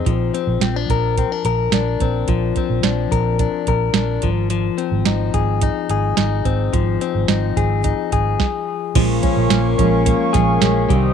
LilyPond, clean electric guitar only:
\new Staff \with { instrumentName = "Clean electric guitar" } { \time 4/4 \key bes \mixolydian \tempo 4 = 108 f8 c'8 c'16 d'16 bes'8 c'16 d'16 bes'8 d'8 c'8 | f8 c'8 d'8 bes'8 d'8 bes'8 d'8 f8 | f8 c'8 ees'8 aes'8 ees'8 aes'8 ees'8 c'8 | f8 c'8 ees'8 aes'8 ees'8 aes'8 r4 |
f8 des'8 bes8 des'8 bes8 aes'8 des'8 g8 | }